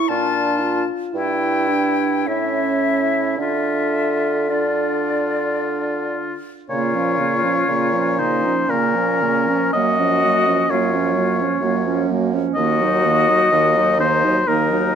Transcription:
Already playing: clarinet E4
0.08 bassoon A#2, french horn D4, clarinet D4, oboe F4, flute A5
0.61 french horn F4
1.14 bassoon G2, clarinet D4, french horn E4, oboe E4, flute G5
1.69 french horn D4
2.25 bassoon A2, clarinet C#4, french horn C#4, oboe E4, flute E5
3.38 bassoon D3, clarinet D4, oboe F4, french horn A4, flute E5
4.49 clarinet D4, oboe F4, flute D5
6.69 bassoon A#2, french horn C#3, clarinet A#3, flute F4, oboe C#5
6.94 french horn F3, clarinet C#4
7.19 french horn C#3, clarinet A#3
7.43 french horn F3, clarinet C#4
7.67 bassoon A#2, french horn C#3, clarinet A#3
7.94 french horn F3, clarinet C#4
8.19 french horn C#3, clarinet A#3, flute D#4, oboe C5
8.44 french horn F3, clarinet C#4
8.68 bassoon A#2, french horn C#3, clarinet A#3, flute C#4, oboe A#4
8.95 french horn F3, clarinet C#4
9.22 french horn C#3, clarinet A#3
9.48 french horn F3, clarinet C#4
9.73 bassoon F#2, french horn F#3, clarinet A#3, flute F#4, oboe D#5
10.00 french horn F3, clarinet C#4
10.24 french horn F#3, clarinet A#3
10.47 french horn F3, clarinet C#4
10.69 bassoon F#2, french horn F#3, clarinet A#3, flute F4, oboe C#5
10.92 french horn F3, clarinet C#4
11.14 french horn F#3, clarinet A#3
11.37 french horn F3, clarinet C#4
11.61 bassoon F#2, french horn F#3, clarinet A#3
11.84 french horn F3, clarinet C#4
12.09 french horn F#3, clarinet A#3
12.33 french horn F3, clarinet C#4
12.55 bassoon D#2, french horn D#3, clarinet A#3, flute F#4, oboe D#5
12.81 french horn F#3, clarinet D#4
13.05 french horn D#3, clarinet A#3
13.28 french horn F#3, clarinet D#4
13.51 bassoon D#2, french horn D#3, clarinet A#3
13.76 french horn F#3, clarinet D#4
13.99 french horn D#3, clarinet A#3, flute D#4, oboe C5
14.24 french horn F#3, clarinet D#4
14.48 bassoon D#2, french horn D#3, clarinet A#3, flute D#4, oboe A#4
14.72 french horn F#3, clarinet D#4

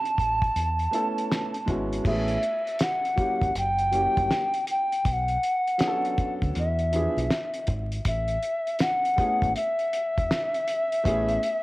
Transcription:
Already playing: recorder A5
0.05 closed hi-hat
0.18 fingered electric bass A1, kick, closed hi-hat
0.42 kick, closed hi-hat
0.56 fingered electric bass E2, closed hi-hat
0.79 closed hi-hat
0.91 grand piano A3 B3 C#4 E4 A4, closed hi-hat
1.18 closed hi-hat
1.32 snare, closed hi-hat
1.54 closed hi-hat
1.66 fingered electric bass G#1, grand piano G#3 B3 C#4 E4 F#4, kick, closed hi-hat
1.93 closed hi-hat
2.04 fingered electric bass A1, grand piano A3 B3 C#4 E4 G#4, recorder E5, kick, crash
2.28 closed hi-hat
2.43 closed hi-hat
2.67 closed hi-hat
2.79 recorder F#5, snare, closed hi-hat
3.05 closed hi-hat
3.16 grand piano F#3 A#3 C#4 E4 G4, kick, closed hi-hat
3.42 fingered electric bass G#1, kick, closed hi-hat
3.55 fingered electric bass F#1, recorder G5, closed hi-hat
3.79 closed hi-hat
3.91 grand piano F#3 A#3 C#4 E4 G4, closed hi-hat
4.17 fingered electric bass G1, kick, closed hi-hat
4.31 snare, closed hi-hat
4.54 closed hi-hat
4.67 closed hi-hat
4.71 recorder G5
4.92 closed hi-hat
5.05 fingered electric bass B1, kick, closed hi-hat
5.09 recorder F#5 G5
5.28 closed hi-hat
5.43 closed hi-hat
5.67 closed hi-hat
5.78 grand piano F#3 B3 C#4 D4 G#4, snare, closed hi-hat
5.87 grand piano A4
6.05 closed hi-hat
6.18 kick, closed hi-hat
6.42 fingered electric bass D2, kick, closed hi-hat
6.55 fingered electric bass E2, closed hi-hat
6.59 recorder E5
6.79 closed hi-hat
6.92 grand piano F3 B3 D4 E4 G#4, closed hi-hat
7.17 fingered electric bass B1, closed hi-hat
7.30 snare, closed hi-hat
7.54 closed hi-hat
7.67 fingered electric bass G#1, kick, closed hi-hat
7.92 closed hi-hat
8.05 fingered electric bass A1, recorder E5, kick, closed hi-hat
8.28 closed hi-hat
8.43 closed hi-hat
8.67 closed hi-hat
8.79 recorder F#5, snare, closed hi-hat
9.05 closed hi-hat
9.16 grand piano A3 B3 C#4 E4 G#4, kick, closed hi-hat
9.42 fingered electric bass G#1, kick, closed hi-hat
9.56 recorder E5, closed hi-hat
9.79 closed hi-hat
9.93 closed hi-hat
10.18 fingered electric bass E1, kick, closed hi-hat
10.31 snare, closed hi-hat
10.54 closed hi-hat
10.68 closed hi-hat
10.92 closed hi-hat
11.03 fingered electric bass A1, grand piano A3 B3 C#4 E4 G#4, kick, closed hi-hat
11.29 closed hi-hat
11.43 closed hi-hat

